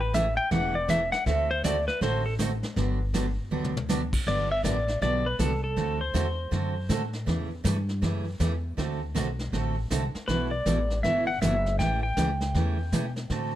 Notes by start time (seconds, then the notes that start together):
Already playing: A1
0.01 B4
0.14 C#3 E3 A3 C#4 G4 E5, kick, snare, hi-hat pedal
0.37 G5
0.51 E1 C#3 E3 A3 C#4 G4 F#5, brush sweep, kick, snare
0.75 D5
0.88 C#3 E3 A3 C#4 G4 E5, kick, snare, hi-hat pedal
1.12 F#5, snare
1.26 D2 D3 A3 C4 F#4 A4 E5, brush sweep, kick, snare
1.51 C5
1.64 D3 A3 C4 F#4 A4 D5, kick, snare, hi-hat pedal
1.88 B4, snare
2.01 A1 D3 A3 C4 F#4 A4 C5, brush sweep, kick, snare
2.26 A4
2.39 D3 A3 C4 F#4 A4, kick, snare, hi-hat pedal
2.63 snare
2.76 G1 D3 F#3 B3 D4 G4, brush sweep, kick, snare
3.14 D3 F#3 B3 D4 G4, kick, snare, hi-hat pedal
3.51 D2 D3 F#3 B3 D4 G4
3.64 mid tom
3.77 mid tom
3.89 D3 F#3 B3 D4 G4, snare, hi-hat pedal
4.13 kick, crash
4.26 G1 D3 F#3 B3 D4 G4 D5, brush sweep, kick, snare
4.52 E5
4.64 A1 D3 F#3 B3 D4 G4 D5, kick, snare, hi-hat pedal
4.88 snare
5.01 B1 D3 F#3 B3 D4 G4 D5, brush sweep, kick, snare
5.26 B4
5.39 C2 D3 F#3 B3 D4 G4 A4, kick, snare, hi-hat pedal
5.64 A4
5.76 D2 D3 A3 C4 F#4 A4, brush sweep, kick, snare
6.01 C5
6.14 E2 D3 A3 C4 F#4 A4, kick, snare, hi-hat pedal
6.51 F#2 D3 A3 C4 F#4 A4, brush sweep, kick, snare
6.89 A2 D3 A3 C4 F#4 A4, kick, snare, hi-hat pedal
7.13 snare
7.26 E2 C#3 E3 A3 C#4 G4, brush sweep, kick, snare
7.64 G2 C#3 E3 A3 C#4 G4, kick, snare, hi-hat pedal
7.89 snare
8.02 F#2 C#3 E3 A3 C#4 G4, brush sweep, kick, snare
8.40 E2 C#3 E3 A3 C#4 G4, kick, snare, hi-hat pedal
8.77 D2 D3 A3 C4 F#4 A4, brush sweep, kick, snare
9.15 B1 D3 A3 C4 F#4 A4, kick, snare, hi-hat pedal
9.39 snare
9.52 A1 D3 A3 C4 F#4 A4, brush sweep, kick, snare
9.90 C2 D3 A3 C4 F#4 A4, kick, snare, hi-hat pedal
10.14 muted upright bass stroke, snare
10.28 B1 B2 E3 A3 E4 F#4 B4, brush sweep, kick, snare
10.51 D5
10.66 A1 B2 E3 A3 E4 F#4, kick, snare, hi-hat pedal
10.90 snare
11.03 G1 B2 E3 A3 E4 F#4 E5, brush sweep, kick, snare
11.27 F#5
11.41 F#1 B2 E3 A3 E4 F#4 E5, kick, snare, hi-hat pedal
11.66 snare
11.79 A1 C#3 E3 A3 C#4 G4 G5, brush sweep, kick, snare
12.03 G5
12.17 C#2 C#3 E3 A3 C#4 G4, kick, snare, hi-hat pedal
12.41 snare
12.55 E2 C#3 E3 A3 C#4 G4, brush sweep, kick, snare
12.92 B2 C#3 E3 A3 C#4 G4, kick, snare, hi-hat pedal
13.16 snare
13.30 A2 D3 A3 C4 F#4 A4, brush sweep, kick, snare